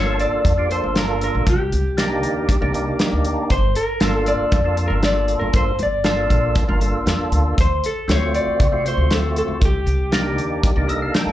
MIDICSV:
0, 0, Header, 1, 6, 480
1, 0, Start_track
1, 0, Key_signature, -2, "minor"
1, 0, Tempo, 509338
1, 1382, Time_signature, 4, 2, 24, 8
1, 10668, End_track
2, 0, Start_track
2, 0, Title_t, "Clean electric guitar"
2, 0, Program_c, 0, 27
2, 0, Note_on_c, 0, 73, 91
2, 190, Note_off_c, 0, 73, 0
2, 194, Note_on_c, 0, 74, 99
2, 671, Note_off_c, 0, 74, 0
2, 675, Note_on_c, 0, 72, 90
2, 913, Note_off_c, 0, 72, 0
2, 917, Note_on_c, 0, 70, 85
2, 1156, Note_off_c, 0, 70, 0
2, 1168, Note_on_c, 0, 70, 80
2, 1379, Note_off_c, 0, 70, 0
2, 1410, Note_on_c, 0, 67, 77
2, 2798, Note_off_c, 0, 67, 0
2, 3313, Note_on_c, 0, 72, 93
2, 3531, Note_off_c, 0, 72, 0
2, 3547, Note_on_c, 0, 70, 83
2, 3905, Note_off_c, 0, 70, 0
2, 3905, Note_on_c, 0, 69, 83
2, 4029, Note_off_c, 0, 69, 0
2, 4033, Note_on_c, 0, 74, 99
2, 4474, Note_off_c, 0, 74, 0
2, 4596, Note_on_c, 0, 70, 80
2, 4643, Note_off_c, 0, 70, 0
2, 4758, Note_on_c, 0, 74, 83
2, 5079, Note_off_c, 0, 74, 0
2, 5084, Note_on_c, 0, 70, 75
2, 5223, Note_off_c, 0, 70, 0
2, 5239, Note_on_c, 0, 72, 85
2, 5454, Note_off_c, 0, 72, 0
2, 5492, Note_on_c, 0, 74, 79
2, 6160, Note_off_c, 0, 74, 0
2, 7167, Note_on_c, 0, 72, 90
2, 7379, Note_off_c, 0, 72, 0
2, 7407, Note_on_c, 0, 69, 82
2, 7642, Note_off_c, 0, 69, 0
2, 7643, Note_on_c, 0, 73, 92
2, 7857, Note_off_c, 0, 73, 0
2, 7874, Note_on_c, 0, 74, 93
2, 8362, Note_off_c, 0, 74, 0
2, 8366, Note_on_c, 0, 72, 84
2, 8602, Note_off_c, 0, 72, 0
2, 8608, Note_on_c, 0, 69, 83
2, 8832, Note_off_c, 0, 69, 0
2, 8843, Note_on_c, 0, 69, 84
2, 9081, Note_off_c, 0, 69, 0
2, 9096, Note_on_c, 0, 67, 79
2, 10484, Note_off_c, 0, 67, 0
2, 10668, End_track
3, 0, Start_track
3, 0, Title_t, "Tonewheel organ"
3, 0, Program_c, 1, 16
3, 0, Note_on_c, 1, 58, 76
3, 0, Note_on_c, 1, 62, 74
3, 0, Note_on_c, 1, 65, 73
3, 0, Note_on_c, 1, 69, 88
3, 496, Note_off_c, 1, 58, 0
3, 499, Note_off_c, 1, 62, 0
3, 501, Note_off_c, 1, 65, 0
3, 505, Note_off_c, 1, 69, 0
3, 542, Note_on_c, 1, 58, 65
3, 544, Note_on_c, 1, 62, 64
3, 550, Note_on_c, 1, 65, 62
3, 558, Note_on_c, 1, 67, 76
3, 646, Note_off_c, 1, 58, 0
3, 651, Note_off_c, 1, 62, 0
3, 655, Note_off_c, 1, 65, 0
3, 657, Note_on_c, 1, 58, 69
3, 659, Note_off_c, 1, 67, 0
3, 663, Note_on_c, 1, 62, 62
3, 668, Note_on_c, 1, 65, 64
3, 673, Note_on_c, 1, 69, 81
3, 1379, Note_off_c, 1, 58, 0
3, 1382, Note_off_c, 1, 62, 0
3, 1385, Note_off_c, 1, 65, 0
3, 1387, Note_off_c, 1, 69, 0
3, 1858, Note_on_c, 1, 58, 76
3, 1862, Note_on_c, 1, 62, 72
3, 1866, Note_on_c, 1, 63, 74
3, 1875, Note_on_c, 1, 67, 93
3, 2417, Note_off_c, 1, 58, 0
3, 2419, Note_off_c, 1, 62, 0
3, 2421, Note_off_c, 1, 63, 0
3, 2426, Note_off_c, 1, 67, 0
3, 2460, Note_on_c, 1, 58, 79
3, 2468, Note_on_c, 1, 62, 77
3, 2469, Note_on_c, 1, 63, 72
3, 2474, Note_on_c, 1, 67, 91
3, 2565, Note_off_c, 1, 58, 0
3, 2569, Note_off_c, 1, 62, 0
3, 2574, Note_off_c, 1, 63, 0
3, 2576, Note_on_c, 1, 58, 84
3, 2577, Note_off_c, 1, 67, 0
3, 2581, Note_on_c, 1, 62, 78
3, 2590, Note_on_c, 1, 63, 79
3, 2595, Note_on_c, 1, 67, 96
3, 3298, Note_off_c, 1, 58, 0
3, 3301, Note_off_c, 1, 62, 0
3, 3306, Note_off_c, 1, 63, 0
3, 3308, Note_off_c, 1, 67, 0
3, 3772, Note_on_c, 1, 58, 84
3, 3776, Note_on_c, 1, 62, 77
3, 3781, Note_on_c, 1, 65, 77
3, 3788, Note_on_c, 1, 69, 92
3, 4334, Note_off_c, 1, 58, 0
3, 4336, Note_off_c, 1, 62, 0
3, 4339, Note_off_c, 1, 65, 0
3, 4342, Note_off_c, 1, 69, 0
3, 4374, Note_on_c, 1, 58, 72
3, 4378, Note_on_c, 1, 62, 59
3, 4384, Note_on_c, 1, 65, 64
3, 4391, Note_on_c, 1, 69, 75
3, 4479, Note_off_c, 1, 58, 0
3, 4486, Note_off_c, 1, 62, 0
3, 4490, Note_off_c, 1, 65, 0
3, 4490, Note_on_c, 1, 58, 73
3, 4496, Note_off_c, 1, 69, 0
3, 4498, Note_on_c, 1, 62, 68
3, 4502, Note_on_c, 1, 65, 65
3, 4507, Note_on_c, 1, 69, 76
3, 5387, Note_off_c, 1, 58, 0
3, 5391, Note_off_c, 1, 62, 0
3, 5393, Note_off_c, 1, 65, 0
3, 5396, Note_off_c, 1, 69, 0
3, 5691, Note_on_c, 1, 58, 80
3, 5695, Note_on_c, 1, 62, 77
3, 5702, Note_on_c, 1, 65, 72
3, 5707, Note_on_c, 1, 69, 90
3, 6255, Note_off_c, 1, 58, 0
3, 6256, Note_off_c, 1, 62, 0
3, 6260, Note_off_c, 1, 65, 0
3, 6263, Note_off_c, 1, 69, 0
3, 6293, Note_on_c, 1, 58, 79
3, 6297, Note_on_c, 1, 62, 72
3, 6304, Note_on_c, 1, 65, 75
3, 6308, Note_on_c, 1, 70, 87
3, 6402, Note_off_c, 1, 58, 0
3, 6407, Note_off_c, 1, 62, 0
3, 6412, Note_off_c, 1, 65, 0
3, 6414, Note_on_c, 1, 58, 87
3, 6415, Note_off_c, 1, 70, 0
3, 6418, Note_on_c, 1, 62, 77
3, 6423, Note_on_c, 1, 65, 72
3, 6429, Note_on_c, 1, 69, 88
3, 7138, Note_off_c, 1, 58, 0
3, 7141, Note_off_c, 1, 62, 0
3, 7143, Note_off_c, 1, 65, 0
3, 7146, Note_off_c, 1, 69, 0
3, 7612, Note_on_c, 1, 57, 78
3, 7615, Note_on_c, 1, 60, 69
3, 7622, Note_on_c, 1, 65, 72
3, 7625, Note_on_c, 1, 66, 88
3, 8176, Note_off_c, 1, 57, 0
3, 8177, Note_off_c, 1, 60, 0
3, 8181, Note_off_c, 1, 65, 0
3, 8183, Note_off_c, 1, 66, 0
3, 8216, Note_on_c, 1, 57, 67
3, 8221, Note_on_c, 1, 60, 63
3, 8227, Note_on_c, 1, 65, 59
3, 8233, Note_on_c, 1, 66, 74
3, 8329, Note_off_c, 1, 57, 0
3, 8332, Note_off_c, 1, 60, 0
3, 8335, Note_off_c, 1, 65, 0
3, 8338, Note_off_c, 1, 66, 0
3, 8341, Note_on_c, 1, 57, 70
3, 8343, Note_on_c, 1, 60, 68
3, 8349, Note_on_c, 1, 65, 64
3, 8356, Note_on_c, 1, 66, 80
3, 9063, Note_off_c, 1, 57, 0
3, 9064, Note_off_c, 1, 60, 0
3, 9067, Note_off_c, 1, 65, 0
3, 9070, Note_off_c, 1, 66, 0
3, 9533, Note_on_c, 1, 58, 83
3, 9540, Note_on_c, 1, 62, 70
3, 9545, Note_on_c, 1, 63, 71
3, 9550, Note_on_c, 1, 67, 84
3, 10098, Note_off_c, 1, 58, 0
3, 10101, Note_off_c, 1, 62, 0
3, 10103, Note_off_c, 1, 63, 0
3, 10106, Note_off_c, 1, 67, 0
3, 10141, Note_on_c, 1, 58, 84
3, 10147, Note_on_c, 1, 62, 74
3, 10152, Note_on_c, 1, 63, 76
3, 10158, Note_on_c, 1, 67, 95
3, 10245, Note_off_c, 1, 58, 0
3, 10250, Note_off_c, 1, 62, 0
3, 10255, Note_off_c, 1, 63, 0
3, 10256, Note_on_c, 1, 58, 83
3, 10261, Note_off_c, 1, 67, 0
3, 10261, Note_on_c, 1, 62, 80
3, 10261, Note_on_c, 1, 75, 71
3, 10267, Note_on_c, 1, 63, 76
3, 10271, Note_on_c, 1, 69, 93
3, 10378, Note_off_c, 1, 75, 0
3, 10388, Note_on_c, 1, 77, 65
3, 10497, Note_off_c, 1, 77, 0
3, 10504, Note_on_c, 1, 79, 70
3, 10668, Note_off_c, 1, 58, 0
3, 10668, Note_off_c, 1, 62, 0
3, 10668, Note_off_c, 1, 63, 0
3, 10668, Note_off_c, 1, 69, 0
3, 10668, Note_off_c, 1, 79, 0
3, 10668, End_track
4, 0, Start_track
4, 0, Title_t, "Upright bass"
4, 0, Program_c, 2, 32
4, 0, Note_on_c, 2, 31, 85
4, 257, Note_off_c, 2, 31, 0
4, 420, Note_on_c, 2, 41, 85
4, 736, Note_off_c, 2, 41, 0
4, 787, Note_on_c, 2, 31, 80
4, 1203, Note_off_c, 2, 31, 0
4, 1270, Note_on_c, 2, 34, 83
4, 1369, Note_off_c, 2, 34, 0
4, 1383, Note_on_c, 2, 36, 96
4, 1591, Note_off_c, 2, 36, 0
4, 1627, Note_on_c, 2, 36, 73
4, 2107, Note_off_c, 2, 36, 0
4, 2107, Note_on_c, 2, 39, 78
4, 2313, Note_off_c, 2, 39, 0
4, 2467, Note_on_c, 2, 36, 93
4, 2674, Note_off_c, 2, 36, 0
4, 2946, Note_on_c, 2, 38, 74
4, 3154, Note_off_c, 2, 38, 0
4, 3300, Note_on_c, 2, 31, 93
4, 3509, Note_off_c, 2, 31, 0
4, 3780, Note_on_c, 2, 31, 86
4, 4096, Note_off_c, 2, 31, 0
4, 4261, Note_on_c, 2, 41, 84
4, 4577, Note_off_c, 2, 41, 0
4, 4618, Note_on_c, 2, 31, 83
4, 5038, Note_off_c, 2, 31, 0
4, 5098, Note_on_c, 2, 31, 78
4, 5410, Note_off_c, 2, 31, 0
4, 5459, Note_on_c, 2, 31, 84
4, 5937, Note_off_c, 2, 31, 0
4, 5937, Note_on_c, 2, 34, 78
4, 6148, Note_off_c, 2, 34, 0
4, 6302, Note_on_c, 2, 31, 89
4, 6512, Note_off_c, 2, 31, 0
4, 6654, Note_on_c, 2, 41, 79
4, 6874, Note_off_c, 2, 41, 0
4, 6897, Note_on_c, 2, 38, 78
4, 7115, Note_off_c, 2, 38, 0
4, 7142, Note_on_c, 2, 38, 89
4, 7351, Note_off_c, 2, 38, 0
4, 7614, Note_on_c, 2, 38, 81
4, 7934, Note_off_c, 2, 38, 0
4, 8102, Note_on_c, 2, 48, 91
4, 8419, Note_off_c, 2, 48, 0
4, 8456, Note_on_c, 2, 38, 80
4, 8878, Note_off_c, 2, 38, 0
4, 8935, Note_on_c, 2, 38, 78
4, 9041, Note_off_c, 2, 38, 0
4, 9060, Note_on_c, 2, 36, 94
4, 9270, Note_off_c, 2, 36, 0
4, 9294, Note_on_c, 2, 36, 81
4, 9771, Note_off_c, 2, 36, 0
4, 9771, Note_on_c, 2, 39, 82
4, 9985, Note_off_c, 2, 39, 0
4, 10138, Note_on_c, 2, 36, 91
4, 10352, Note_off_c, 2, 36, 0
4, 10616, Note_on_c, 2, 39, 78
4, 10668, Note_off_c, 2, 39, 0
4, 10668, End_track
5, 0, Start_track
5, 0, Title_t, "Muted upright bass strokes"
5, 307, Note_on_c, 9, 29, 33
5, 401, Note_off_c, 9, 29, 0
5, 4146, Note_on_c, 9, 29, 34
5, 4241, Note_off_c, 9, 29, 0
5, 7982, Note_on_c, 9, 29, 35
5, 8076, Note_off_c, 9, 29, 0
5, 10668, End_track
6, 0, Start_track
6, 0, Title_t, "Drums"
6, 184, Note_on_c, 9, 42, 55
6, 278, Note_off_c, 9, 42, 0
6, 422, Note_on_c, 9, 42, 77
6, 423, Note_on_c, 9, 36, 96
6, 516, Note_off_c, 9, 42, 0
6, 517, Note_off_c, 9, 36, 0
6, 666, Note_on_c, 9, 42, 56
6, 761, Note_off_c, 9, 42, 0
6, 900, Note_on_c, 9, 42, 74
6, 904, Note_on_c, 9, 38, 103
6, 994, Note_off_c, 9, 42, 0
6, 998, Note_off_c, 9, 38, 0
6, 1144, Note_on_c, 9, 42, 55
6, 1238, Note_off_c, 9, 42, 0
6, 1381, Note_on_c, 9, 42, 83
6, 1382, Note_on_c, 9, 36, 101
6, 1475, Note_off_c, 9, 42, 0
6, 1477, Note_off_c, 9, 36, 0
6, 1625, Note_on_c, 9, 42, 62
6, 1719, Note_off_c, 9, 42, 0
6, 1864, Note_on_c, 9, 42, 81
6, 1867, Note_on_c, 9, 38, 103
6, 1958, Note_off_c, 9, 42, 0
6, 1962, Note_off_c, 9, 38, 0
6, 2103, Note_on_c, 9, 42, 61
6, 2197, Note_off_c, 9, 42, 0
6, 2344, Note_on_c, 9, 36, 103
6, 2346, Note_on_c, 9, 42, 82
6, 2438, Note_off_c, 9, 36, 0
6, 2440, Note_off_c, 9, 42, 0
6, 2585, Note_on_c, 9, 42, 68
6, 2679, Note_off_c, 9, 42, 0
6, 2821, Note_on_c, 9, 42, 83
6, 2825, Note_on_c, 9, 38, 104
6, 2915, Note_off_c, 9, 42, 0
6, 2919, Note_off_c, 9, 38, 0
6, 3059, Note_on_c, 9, 42, 59
6, 3153, Note_off_c, 9, 42, 0
6, 3299, Note_on_c, 9, 42, 78
6, 3301, Note_on_c, 9, 36, 107
6, 3393, Note_off_c, 9, 42, 0
6, 3396, Note_off_c, 9, 36, 0
6, 3539, Note_on_c, 9, 42, 61
6, 3633, Note_off_c, 9, 42, 0
6, 3774, Note_on_c, 9, 42, 81
6, 3778, Note_on_c, 9, 38, 107
6, 3868, Note_off_c, 9, 42, 0
6, 3872, Note_off_c, 9, 38, 0
6, 4018, Note_on_c, 9, 42, 56
6, 4112, Note_off_c, 9, 42, 0
6, 4258, Note_on_c, 9, 42, 76
6, 4261, Note_on_c, 9, 36, 110
6, 4352, Note_off_c, 9, 42, 0
6, 4355, Note_off_c, 9, 36, 0
6, 4498, Note_on_c, 9, 42, 58
6, 4592, Note_off_c, 9, 42, 0
6, 4737, Note_on_c, 9, 42, 73
6, 4740, Note_on_c, 9, 38, 103
6, 4831, Note_off_c, 9, 42, 0
6, 4835, Note_off_c, 9, 38, 0
6, 4977, Note_on_c, 9, 42, 53
6, 5072, Note_off_c, 9, 42, 0
6, 5215, Note_on_c, 9, 42, 77
6, 5218, Note_on_c, 9, 36, 110
6, 5309, Note_off_c, 9, 42, 0
6, 5312, Note_off_c, 9, 36, 0
6, 5454, Note_on_c, 9, 42, 60
6, 5548, Note_off_c, 9, 42, 0
6, 5693, Note_on_c, 9, 42, 81
6, 5697, Note_on_c, 9, 38, 103
6, 5787, Note_off_c, 9, 42, 0
6, 5791, Note_off_c, 9, 38, 0
6, 5940, Note_on_c, 9, 36, 73
6, 5941, Note_on_c, 9, 42, 56
6, 6034, Note_off_c, 9, 36, 0
6, 6035, Note_off_c, 9, 42, 0
6, 6176, Note_on_c, 9, 42, 80
6, 6179, Note_on_c, 9, 36, 101
6, 6270, Note_off_c, 9, 42, 0
6, 6273, Note_off_c, 9, 36, 0
6, 6419, Note_on_c, 9, 42, 66
6, 6513, Note_off_c, 9, 42, 0
6, 6661, Note_on_c, 9, 42, 85
6, 6664, Note_on_c, 9, 38, 99
6, 6755, Note_off_c, 9, 42, 0
6, 6759, Note_off_c, 9, 38, 0
6, 6899, Note_on_c, 9, 42, 59
6, 6993, Note_off_c, 9, 42, 0
6, 7143, Note_on_c, 9, 36, 101
6, 7146, Note_on_c, 9, 42, 83
6, 7237, Note_off_c, 9, 36, 0
6, 7240, Note_off_c, 9, 42, 0
6, 7385, Note_on_c, 9, 42, 60
6, 7480, Note_off_c, 9, 42, 0
6, 7626, Note_on_c, 9, 42, 88
6, 7629, Note_on_c, 9, 38, 100
6, 7720, Note_off_c, 9, 42, 0
6, 7724, Note_off_c, 9, 38, 0
6, 7864, Note_on_c, 9, 42, 60
6, 7958, Note_off_c, 9, 42, 0
6, 8104, Note_on_c, 9, 36, 107
6, 8106, Note_on_c, 9, 42, 74
6, 8198, Note_off_c, 9, 36, 0
6, 8200, Note_off_c, 9, 42, 0
6, 8348, Note_on_c, 9, 42, 63
6, 8442, Note_off_c, 9, 42, 0
6, 8582, Note_on_c, 9, 42, 77
6, 8585, Note_on_c, 9, 38, 101
6, 8676, Note_off_c, 9, 42, 0
6, 8680, Note_off_c, 9, 38, 0
6, 8824, Note_on_c, 9, 42, 55
6, 8919, Note_off_c, 9, 42, 0
6, 9061, Note_on_c, 9, 42, 74
6, 9062, Note_on_c, 9, 36, 107
6, 9155, Note_off_c, 9, 42, 0
6, 9157, Note_off_c, 9, 36, 0
6, 9300, Note_on_c, 9, 42, 54
6, 9395, Note_off_c, 9, 42, 0
6, 9539, Note_on_c, 9, 42, 77
6, 9543, Note_on_c, 9, 38, 110
6, 9634, Note_off_c, 9, 42, 0
6, 9637, Note_off_c, 9, 38, 0
6, 9785, Note_on_c, 9, 42, 56
6, 9879, Note_off_c, 9, 42, 0
6, 10022, Note_on_c, 9, 36, 108
6, 10022, Note_on_c, 9, 42, 79
6, 10116, Note_off_c, 9, 36, 0
6, 10116, Note_off_c, 9, 42, 0
6, 10265, Note_on_c, 9, 42, 64
6, 10359, Note_off_c, 9, 42, 0
6, 10502, Note_on_c, 9, 42, 81
6, 10506, Note_on_c, 9, 38, 102
6, 10597, Note_off_c, 9, 42, 0
6, 10600, Note_off_c, 9, 38, 0
6, 10668, End_track
0, 0, End_of_file